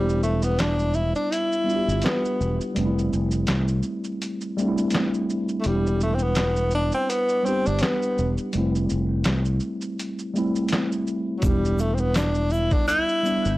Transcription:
Already playing: fingered electric bass E1, tenor saxophone G3, tine electric piano G3 B3 D4 E4 C5
0.09 shaker
0.23 tenor saxophone A3, shaker
0.42 tenor saxophone B3, shaker
0.59 tenor saxophone D4, snare, clap, closed hi-hat, shaker
0.79 shaker
0.94 tenor saxophone E4, shaker
1.15 tenor saxophone D4, shaker
1.32 tenor saxophone E4, closed hi-hat, shaker
1.52 shaker
1.64 tine electric piano G3 B3 D4
1.69 tine electric piano F4, shaker
1.75 tine electric piano G4
1.88 fingered electric bass G1, shaker
2.02 tenor saxophone B3, closed hi-hat, shaker
2.06 snare, clap
2.25 shaker
2.41 fingered electric bass E1, shaker
2.61 shaker
2.75 fingered electric bass F1, tine electric piano G3 A3 C4, closed hi-hat, shaker
2.79 tine electric piano D4
2.86 tine electric piano E4
2.99 shaker
3.13 fingered electric bass F1, shaker
3.31 shaker
3.47 fingered electric bass C2, snare, clap, closed hi-hat, shaker
3.68 shaker
3.83 shaker
4.04 shaker
4.22 closed hi-hat, shaker
4.41 shaker
4.57 tine electric piano G3 A3 C4, shaker
4.61 tine electric piano D4
4.68 tine electric piano E4
4.78 shaker
4.90 closed hi-hat, shaker
4.95 snare, clap
5.14 shaker
5.30 shaker
5.49 shaker
5.61 tine electric piano F#3, tenor saxophone A3, closed hi-hat, shaker
5.66 fingered electric bass E1, tenor saxophone G3, tine electric piano B3 D4 E4
5.71 tine electric piano G3
5.87 shaker
6.01 tenor saxophone A3, shaker
6.14 tenor saxophone C4
6.19 shaker
6.23 tenor saxophone B3
6.35 snare, clap, closed hi-hat, shaker
6.56 shaker
6.71 tenor saxophone D4, shaker
6.92 tenor saxophone C4, shaker
7.10 tenor saxophone B3, closed hi-hat, shaker
7.29 shaker
7.43 tine electric piano G3 B3 D4, tenor saxophone C4, shaker
7.48 tine electric piano G4
7.66 fingered electric bass G1, tenor saxophone D4, shaker
7.79 tenor saxophone B3, closed hi-hat, shaker
7.83 snare, clap
8.02 shaker
8.18 fingered electric bass E1, shaker
8.38 shaker
8.53 fingered electric bass F1, tine electric piano G3 A3 C4, closed hi-hat, shaker
8.58 tine electric piano E4
8.75 shaker
8.90 fingered electric bass F1, shaker
9.24 fingered electric bass C2, snare, clap, closed hi-hat, shaker
9.45 shaker
9.60 shaker
9.81 shaker
9.99 closed hi-hat, shaker
10.19 shaker
10.34 tine electric piano G3 A3 C4, shaker
10.38 tine electric piano E4
10.56 shaker
10.69 closed hi-hat, shaker
10.73 snare, clap
10.92 shaker
11.07 shaker
11.38 tenor saxophone F#3, tine electric piano G3, closed hi-hat, shaker
11.43 fingered electric bass E1, tenor saxophone G3, tine electric piano B3 D4 E4, kick, shaker
11.65 shaker
11.78 tenor saxophone A3, shaker
11.94 tenor saxophone C4, shaker
12.00 tenor saxophone B3
12.14 tenor saxophone D4, snare, closed hi-hat, shaker
12.16 clap, shaker
12.35 shaker
12.50 tenor saxophone E4, shaker
12.53 shaker
12.71 tenor saxophone D4, kick, shaker
12.88 tenor saxophone E4, closed hi-hat, shaker
13.09 shaker
13.23 tine electric piano G3 B3 D4, shaker
13.28 tine electric piano E4
13.45 fingered electric bass G1, shaker

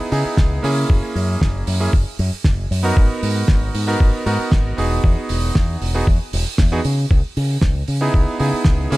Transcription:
0.12 fingered electric bass C#3, electric grand piano B3 D#4 E4 G#4, open hi-hat
0.25 muted fingered electric bass stroke
0.37 fingered electric bass C#2, kick, snare
0.63 fingered electric bass C#3, electric grand piano A#3 C#4 E4 G#4, open hi-hat
0.90 fingered electric bass F#1, kick
1.15 fingered electric bass F#2, open hi-hat
1.41 fingered electric bass F#1, kick, snare
1.67 fingered electric bass F#2, open hi-hat
1.80 electric grand piano A#3 C#4 E4 G#4
1.93 fingered electric bass F#1, kick
2.19 fingered electric bass F#2, open hi-hat
2.32 muted fingered electric bass stroke
2.44 fingered electric bass F#1, kick, snare
2.71 fingered electric bass F#2, open hi-hat
2.83 electric grand piano B3 D#4 F#4 A#4
2.97 fingered electric bass G#1, kick
3.23 fingered electric bass G#2, open hi-hat
3.48 fingered electric bass G#1, kick, snare
3.74 fingered electric bass G#2, open hi-hat
3.87 electric grand piano B3 D#4 F#4 A#4
4.00 fingered electric bass G#1, kick
4.26 fingered electric bass G#2, electric grand piano B3 D#4 F#4 A#4, open hi-hat
4.39 muted fingered electric bass stroke
4.52 fingered electric bass G#1, kick, snare
4.77 fingered electric bass E1, electric grand piano B3 D#4 F#4 G#4, open hi-hat
5.04 fingered electric bass E2, kick
5.29 fingered electric bass E1, open hi-hat
5.55 fingered electric bass E2, kick, snare
5.81 fingered electric bass E1, open hi-hat
5.94 electric grand piano B3 D#4 F#4 G#4
6.07 fingered electric bass E2, kick
6.33 fingered electric bass E1, open hi-hat
6.58 fingered electric bass E2, kick, snare
6.72 electric grand piano B3 D#4 F#4 G#4
6.84 fingered electric bass C#3, open hi-hat
7.11 fingered electric bass C#2, kick
7.37 fingered electric bass C#3, open hi-hat
7.61 fingered electric bass C#2, kick, snare
7.87 fingered electric bass C#3, open hi-hat
8.01 electric grand piano B3 D#4 E4 G#4
8.14 fingered electric bass C#2, kick
8.39 fingered electric bass C#3, electric grand piano B3 D#4 E4 G#4, open hi-hat
8.53 muted fingered electric bass stroke
8.65 fingered electric bass C#2, kick, snare
8.90 fingered electric bass C#3, electric grand piano A#3 C#4 E4 G#4, open hi-hat

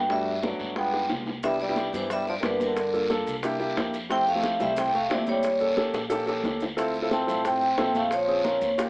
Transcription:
Already playing: upright bass G2
0.09 trombone G3, grand piano A3 B3 D4 F#4, vibraphone E5, high bongo, high conga, long guiro
0.27 high conga
0.42 trombone F#3, grand piano A3 B3 D4 F#4, vibraphone D5, high bongo, high conga, short guiro
0.60 upright bass G2, high bongo, high conga, short guiro
0.76 grand piano G#3 B3 D4 F4, trombone B3, vibraphone G5, high bongo, high conga, long guiro
0.93 high bongo, high conga
1.09 upright bass C2, low bongo, high conga, short guiro
1.26 low bongo, high conga, short guiro
1.43 trombone G3, grand piano B3 D4 E4 G4, vibraphone E5, high bongo, long guiro, maracas
1.60 trombone G3, vibraphone D5, high conga, maracas
1.69 grand piano B3 D4 E4 G4
1.76 high bongo, high conga, short guiro, maracas
1.93 upright bass G2, trombone E3, grand piano B3 D4 E4 G4, vibraphone C5, high bongo, high conga, low conga, short guiro, maracas
2.10 trombone G3, vibraphone E5, high bongo, high conga, low conga, long guiro, maracas
2.27 trombone F3, vibraphone D5, high bongo, high conga, maracas
2.40 upright bass G2, trombone C3, grand piano B3 D4 E4 G4, vibraphone A#4, high bongo, low bongo, high conga, short guiro, maracas
2.45 trombone D3, vibraphone B4
2.60 trombone D3, vibraphone A#4, high bongo, high conga, short guiro, maracas
2.77 high bongo, high conga, long guiro, maracas
2.94 grand piano A#3 D4 F4 A4, high conga, maracas
3.10 grand piano A#3 D4 F4 A4, high bongo, high conga, short guiro, maracas
3.26 upright bass C2, high bongo, high conga, short guiro, maracas
3.43 grand piano A#3 D4 E4 G4, high bongo, high conga, long guiro, maracas
3.59 grand piano A#3 D4 E4 G4, high conga, maracas
3.77 upright bass F2, high bongo, low bongo, high conga, short guiro, maracas
3.94 high bongo, short guiro, maracas
4.09 grand piano A3 C4 E4 G4, trombone C4, vibraphone G5, high bongo, high conga, long guiro, maracas
4.27 trombone A3, vibraphone F5, high conga, maracas
4.35 grand piano A3 C4 E4 G4
4.43 high bongo, high conga, short guiro, maracas
4.60 upright bass C2, trombone G3, grand piano A3 C4 E4 G4, vibraphone E5, high bongo, high conga, low conga, short guiro, maracas
4.76 trombone C4, vibraphone G5, high bongo, high conga, low conga, long guiro, maracas
4.94 trombone A3, vibraphone F5, high bongo, high conga, maracas
5.10 upright bass D#2, trombone F3, grand piano A3 C4 E4 G4, vibraphone D5, high bongo, low bongo, high conga, short guiro, maracas
5.26 trombone G3, vibraphone C#5, high bongo, high conga, short guiro, maracas
5.43 high bongo, high conga, long guiro, maracas
5.59 grand piano A#3 C#4 G4 A4, high conga, maracas
5.77 grand piano A#3 C#4 G4 A4, high bongo, high conga, short guiro, maracas
5.93 upright bass A#1, high bongo, high conga, short guiro, maracas
6.10 grand piano A#3 C#4 G4 A4, high bongo, high conga, long guiro, maracas
6.26 grand piano A#3 C#4 G4 A4, high bongo, high conga, maracas
6.44 upright bass D2, low bongo, high conga, short guiro, maracas
6.60 low bongo, short guiro, maracas
6.77 grand piano C4 E4 F4 A4, high bongo, high conga, long guiro, maracas
6.94 high conga, maracas
7.02 grand piano C4 E4 F4 A4
7.11 trombone C4, vibraphone A5, high bongo, high conga, short guiro, maracas
7.27 upright bass A1, grand piano C4 E4 F4 A4, high bongo, high conga, low conga, short guiro, maracas
7.45 trombone C4, vibraphone G5, high bongo, high conga, long guiro, maracas
7.61 high bongo, high conga, maracas
7.78 upright bass A#1, grand piano C4 E4 F4 A4, high bongo, low bongo, high conga, short guiro, maracas
7.95 trombone A3, vibraphone F5, high bongo, high conga, short guiro, maracas
8.11 trombone F3, vibraphone C#5, high bongo, high conga, long guiro, maracas
8.28 grand piano C4 C#4 F4 G#4, high conga, maracas
8.44 grand piano C4 C#4 F4 A#4, high bongo, high conga, short guiro, maracas
8.61 upright bass D#2, high bongo, high conga, short guiro, maracas
8.78 grand piano A#3 C#4 F4 G4, high bongo, high conga, long guiro, maracas

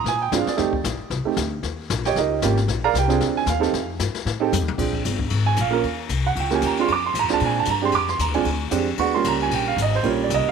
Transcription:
0.04 upright bass A#2, brush sweep, snare
0.08 grand piano G#5
0.22 grand piano G5
0.32 upright bass G2, grand piano G#3 C4 D4 F4 F5, snare, hi-hat pedal
0.47 grand piano D5, muted upright bass stroke, snare
0.57 upright bass F2, grand piano A3 C4 D#4 G4, brush sweep, snare
0.73 kick
0.84 upright bass A#1, snare, hi-hat pedal
0.99 muted upright bass stroke
1.10 upright bass C2, brush sweep, snare
1.25 grand piano A3 C4 D#4 G4, muted upright bass stroke
1.37 upright bass D2, snare, hi-hat pedal
1.63 upright bass D#2, brush sweep, snare
1.90 upright bass A#1, snare, hi-hat pedal
2.05 grand piano G4 C#5 D#5 G5, snare
2.16 upright bass C#2, grand piano D#4 G4 A#4 D#5, brush sweep, snare
2.42 upright bass G#1, grand piano A#3 C#4 F4 G4, snare, hi-hat pedal
2.57 snare
2.68 upright bass A#1, brush sweep, snare
2.84 grand piano A#4 D5 F5 A#5
2.94 upright bass C2, snare, hi-hat pedal
2.98 grand piano G4 G5
3.08 grand piano C4 D4 F4 G#4, snare
3.20 upright bass D2, brush sweep, snare
3.37 grand piano G#5
3.46 upright bass D#2, grand piano F5, snare, hi-hat pedal
3.60 grand piano C4 D#4 G4 A4, snare
3.73 upright bass F2, brush sweep, snare
3.99 upright bass G2, snare, hi-hat pedal
4.15 snare
4.25 upright bass A2, brush sweep, snare
4.40 grand piano C4 D#4 G4 A4
4.52 upright bass F2, hi-hat pedal, high tom
4.62 upright bass D#2
4.68 upright bass C2, high tom
4.78 upright bass A#1, grand piano C4 D4 F4 G#4, kick, crash
4.93 kick, ride
5.05 upright bass G1, hi-hat pedal, ride
5.19 kick
5.30 upright bass G#1, ride
5.46 grand piano G#5
5.56 upright bass A#1, hi-hat pedal, ride
5.61 grand piano F5
5.70 grand piano A#3 C#4 F4 A#4, ride
5.83 upright bass D#2, ride
6.09 upright bass C2, hi-hat pedal, ride
6.27 grand piano F#5
6.35 upright bass C#2, ride
6.40 grand piano G5
6.51 grand piano A#3 C#4 F4 G4, snare
6.55 grand piano G#5
6.62 upright bass D#2, hi-hat pedal, ride
6.66 grand piano A#5
6.77 grand piano G#3 C4 D4 F4, ride
6.81 grand piano C6
6.88 upright bass F2, grand piano C#6, ride
6.92 grand piano D6
7.06 grand piano C6
7.14 upright bass G#2, hi-hat pedal, ride
7.19 upright bass F2, grand piano A#5
7.29 upright bass D2, grand piano G#3 C4 D4 F4, snare
7.33 grand piano A5
7.40 upright bass A#2, ride
7.46 grand piano G#5
7.59 grand piano A5
7.65 upright bass G2, hi-hat pedal, ride
7.70 grand piano A#5
7.82 grand piano G#3 C4 D4 G4 C6
7.92 upright bass F2, grand piano D6, ride
8.08 grand piano C6, snare
8.19 upright bass D#2, grand piano A#5, hi-hat pedal, ride
8.28 upright bass D2
8.34 upright bass A#1, grand piano G#3 C4 D4 F4 G#5, ride
8.45 upright bass D2, ride
8.71 upright bass F2, grand piano G#3 C4 D4 G4, hi-hat pedal, ride
8.98 upright bass D#2, grand piano G#3 B3 D4 F#4 C#6, ride
9.15 grand piano G3 A#3 C#4 F4 C6
9.24 upright bass C#2, grand piano A#5, hi-hat pedal, ride
9.40 grand piano G#5, ride
9.50 upright bass A#1, ride
9.55 grand piano G5
9.68 grand piano F5
9.77 upright bass G#1, hi-hat pedal, ride
9.82 grand piano D#5
9.93 grand piano C5, ride
10.03 upright bass A#1, grand piano G3 A#3 C#4 F4 C#5, ride
10.23 grand piano D5
10.30 upright bass C2, hi-hat pedal, ride
10.34 grand piano D#5
10.45 grand piano F5, muted upright bass stroke

